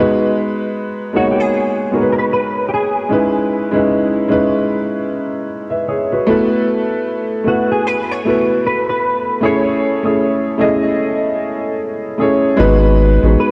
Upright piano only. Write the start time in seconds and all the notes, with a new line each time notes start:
Already playing: G#3 B3 D#4
0.00 F#4 B4
1.13 G#3 A#3 D#4 F#4 C#5
1.20 B3
1.92 G#3 B3 D#4 F#4 A#4
2.02 B4
3.09 G#3 C#4 D#4 E4 B4
3.71 G#3 C#4 D#4 E4 B4
4.28 G#3 C#4 D#4 E4 B4
5.70 B4 E5
5.88 G#4 C#5
6.12 F#4 B4
6.27 A3 B3 E4 F#4 B4
7.44 A3 B3 E4 F#4 B4
8.25 A3 B3 E4 F#4 B4
9.41 A3 C#4 E4 G#4 C#5
10.03 A3 C#4 E4 G#4 C#5
10.58 A3 C#4 E4 G#4 D#5
12.18 A3 C#4 E4 G#4 C#5
12.57 G#3 B3 D#4 F#4 B4
13.23 G#3 B3 D#4 F#4 B4